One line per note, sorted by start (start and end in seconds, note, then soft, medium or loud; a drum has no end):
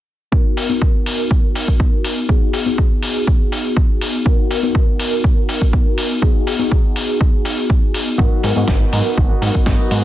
0.32 0.66 B3 medium
0.32 0.67 D#4 medium
0.32 0.67 F#4 medium
0.32 0.67 A#4 medium
0.32 kick loud
0.57 open hi-hat medium
0.69 2.26 B3 medium
0.69 2.26 D#4 medium
0.69 2.26 F#4 medium
0.69 2.27 A#4 medium
0.82 kick loud
1.06 open hi-hat medium
1.31 kick loud
1.55 open hi-hat medium
1.68 kick medium
1.80 kick loud
2.04 open hi-hat loud
2.29 2.63 B3 medium
2.29 2.63 D#4 medium
2.29 2.63 F#4 medium
2.29 2.63 G#4 medium
2.29 kick loud
2.53 open hi-hat loud
2.66 4.22 B3 medium
2.66 4.23 D#4 medium
2.66 4.23 F#4 medium
2.66 4.23 G#4 medium
2.78 kick loud
3.03 open hi-hat loud
3.27 kick loud
3.52 open hi-hat loud
3.77 kick loud
4.01 open hi-hat loud
4.25 4.60 B3 medium
4.25 4.60 D#4 medium
4.25 4.60 F#4 medium
4.25 4.60 A#4 medium
4.25 kick loud
4.51 open hi-hat loud
4.63 6.19 B3 medium
4.63 6.20 D#4 medium
4.63 6.20 F#4 medium
4.63 6.20 A#4 medium
4.75 kick loud
5.00 open hi-hat loud
5.24 kick loud
5.49 open hi-hat loud
5.62 kick medium
5.73 kick loud
5.98 open hi-hat loud
6.22 6.56 B3 medium
6.22 6.57 D#4 medium
6.22 6.57 F#4 medium
6.22 6.57 G#4 medium
6.22 kick loud
6.47 open hi-hat loud
6.59 8.16 B3 medium
6.59 8.16 D#4 medium
6.59 8.16 F#4 medium
6.59 8.17 G#4 medium
6.72 kick loud
6.96 open hi-hat loud
7.21 kick loud
7.45 open hi-hat loud
7.70 kick loud
7.94 open hi-hat loud
8.18 8.28 G#1 medium
8.18 8.56 F#3 medium
8.18 8.53 B3 medium
8.18 8.57 B3 medium
8.18 8.53 D#4 medium
8.18 8.56 D#4 medium
8.18 8.53 F#4 medium
8.18 8.54 F#4 loud
8.18 8.54 A#4 medium
8.18 kick loud
8.33 maracas soft
8.43 8.52 G#2 medium
8.43 open hi-hat loud
8.55 8.64 G#2 medium
8.55 10.04 B3 medium
8.55 8.67 B3 soft
8.55 10.04 D#4 medium
8.55 8.68 D#4 medium
8.55 8.68 F#4 medium
8.55 10.04 F#4 medium
8.55 10.04 A#4 medium
8.55 maracas medium
8.68 8.85 G#1 medium
8.68 8.81 F#3 medium
8.68 8.81 B3 medium
8.68 8.81 D#4 medium
8.68 8.79 F#4 medium
8.68 kick loud
8.68 snare loud
8.80 8.92 B3 soft
8.80 8.93 D#4 soft
8.80 8.92 F#4 medium
8.92 9.01 G#2 medium
8.92 9.05 F#3 medium
8.92 9.06 B3 medium
8.92 9.05 D#4 medium
8.92 9.04 F#4 medium
8.92 open hi-hat loud
9.05 9.31 B3 soft
9.05 9.30 D#4 soft
9.05 9.28 F#4 medium
9.05 maracas medium
9.17 9.34 G#1 medium
9.17 kick loud
9.29 9.41 B3 soft
9.29 9.42 D#4 medium
9.29 9.42 F#4 medium
9.29 maracas soft
9.41 9.50 G#2 medium
9.41 9.54 F#3 medium
9.41 9.55 B3 medium
9.41 9.54 D#4 medium
9.41 9.53 F#4 medium
9.41 open hi-hat loud
9.54 9.64 G#1 soft
9.54 9.66 F#4 medium
9.54 kick medium
9.54 maracas medium
9.66 9.75 G#1 medium
9.66 9.89 F#3 medium
9.66 9.90 B3 medium
9.66 9.91 D#4 medium
9.66 9.92 F#4 medium
9.66 kick loud
9.66 snare loud
9.90 10.04 G#2 medium
9.90 10.04 F#3 medium
9.90 10.04 B3 medium
9.90 10.04 D#4 medium
9.90 10.04 F#4 medium
9.90 open hi-hat loud